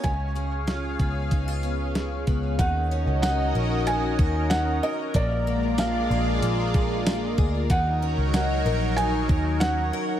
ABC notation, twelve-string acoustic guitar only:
X:1
M:4/4
L:1/16
Q:1/4=94
K:Ebm
V:1 name="Twelve-string acoustic guitar"
D,2 A,2 F2 C2 E F C2 A,2 C2 | E,2 D2 E2 B2 E2 B2 D2 B2 | B,,2 B,2 =D2 A2 D2 A2 B,2 A2 | E,2 D2 E2 B2 E2 B2 D2 B2 |]